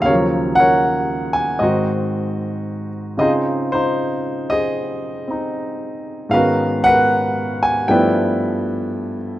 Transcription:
0.00 1.59 D#2 medium
0.00 0.19 G#4 medium
0.00 0.14 F5 loud
0.04 1.61 C#3 medium
0.04 1.63 F#3 medium
0.04 0.58 A#4 medium
0.04 0.58 C#5 medium
0.12 1.65 F3 medium
0.55 1.58 A#4 medium
0.55 1.37 F#5 loud
0.60 1.58 C#5 medium
1.33 1.58 G#5 medium
1.59 3.18 G#2 medium
1.59 3.19 D#3 medium
1.59 3.15 F#4 medium
1.59 3.15 C5 medium
1.59 2.88 D#5 medium
1.63 3.17 C4 medium
3.17 6.32 C#3 medium
3.17 5.26 C4 medium
3.17 3.73 D#4 medium
3.17 4.50 G#4 medium
3.17 3.71 C5 medium
3.17 3.31 D#5 medium
3.22 3.73 F4 medium
3.72 5.26 D#4 medium
3.72 5.26 F4 medium
3.72 4.50 C5 medium
4.50 6.29 G#4 medium
4.50 6.29 C5 medium
4.50 6.38 D#5 loud
5.28 6.32 C4 soft
5.28 6.33 D#4 medium
6.29 7.88 G#2 medium
6.29 7.88 D#3 soft
6.29 7.89 G#3 soft
6.29 7.88 B3 soft
6.29 6.81 F5 loud
6.33 7.90 C#4 soft
6.33 7.90 F#4 medium
6.33 6.85 A#4 medium
6.33 6.85 B4 medium
6.84 7.86 A#4 medium
6.84 7.86 B4 medium
6.84 7.65 F#5 loud
7.63 7.68 G#5 medium
7.88 9.39 G2 medium
7.88 9.39 F3 medium
7.88 9.39 A3 medium
7.88 9.39 B3 medium
7.88 9.39 E4 medium
7.88 9.39 B4 medium
7.88 9.39 D5 medium
7.88 9.16 G5 medium

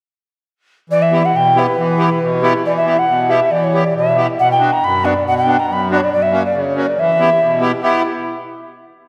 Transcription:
0.90 1.22 E3 medium
0.90 1.04 D5 loud
1.02 1.27 E5 medium
1.11 1.22 B3 medium
1.11 1.23 E4 medium
1.11 1.23 G4 medium
1.25 1.38 F#5 medium
1.33 1.66 B2 medium
1.33 1.61 G5 medium
1.55 1.66 B3 medium
1.55 1.66 E4 soft
1.55 1.67 G4 medium
1.59 2.44 B4 medium
1.77 2.09 E3 medium
1.97 2.09 B3 medium
1.97 2.10 E4 medium
1.97 2.10 G4 medium
2.21 2.54 B2 medium
2.42 2.53 B3 medium
2.42 2.54 E4 medium
2.42 2.54 G4 medium
2.65 2.97 E3 medium
2.65 2.75 D5 medium
2.77 3.00 E5 medium
2.85 2.97 B3 soft
2.85 2.97 E4 medium
2.85 2.97 G4 medium
2.99 3.32 F#5 medium
3.08 3.40 B2 medium
3.28 3.40 B3 medium
3.28 3.40 E4 medium
3.28 3.40 G4 medium
3.28 3.53 E5 medium
3.51 3.83 E3 medium
3.51 3.65 D5 medium
3.64 3.85 C#5 medium
3.73 3.84 B3 medium
3.73 3.84 E4 soft
3.73 3.84 G4 medium
3.84 3.95 D5 medium
3.95 4.27 B2 medium
3.95 4.26 E5 medium
4.15 4.27 B3 medium
4.15 4.27 E4 medium
4.15 4.27 G4 medium
4.39 4.71 B2 medium
4.39 4.49 F#5 medium
4.51 4.74 G5 medium
4.60 4.70 B3 medium
4.60 4.71 D4 medium
4.60 4.71 F#4 medium
4.73 4.86 A#5 medium
4.82 5.14 F#2 medium
4.82 5.06 B5 medium
5.03 5.14 B3 medium
5.03 5.14 D4 soft
5.03 5.14 F#4 medium
5.03 5.25 D5 medium
5.25 5.57 B2 medium
5.25 5.36 F#5 loud
5.38 5.61 G5 medium
5.46 5.57 B3 medium
5.46 5.57 D4 soft
5.46 5.57 F#4 medium
5.59 5.74 A#5 medium
5.67 5.99 F#2 medium
5.73 5.92 B5 medium
5.90 6.00 B3 medium
5.90 6.00 D4 soft
5.90 6.01 F#4 medium
5.90 5.99 D5 medium
5.97 6.06 C#5 medium
6.04 6.12 D5 medium
6.12 6.43 F#2 medium
6.12 6.24 D5 medium
6.22 6.43 E5 medium
6.31 6.42 A#3 medium
6.31 6.43 C#4 medium
6.31 6.43 F#4 medium
6.45 6.57 D5 medium
6.54 6.86 C#3 medium
6.54 6.76 C#5 medium
6.76 6.86 A#3 medium
6.76 6.86 C#4 medium
6.76 6.87 F#4 medium
6.76 6.89 C#5 medium
6.87 7.01 D5 medium
6.98 7.29 E3 medium
6.98 7.62 E5 medium
7.19 7.29 B3 medium
7.19 7.30 E4 medium
7.19 7.30 G4 medium
7.42 7.73 B2 medium
7.60 7.71 B3 medium
7.60 7.72 E4 medium
7.60 7.72 G4 medium
7.83 8.03 B3 medium
7.83 8.03 E4 medium
7.83 8.03 G4 medium
7.83 8.03 E5 medium

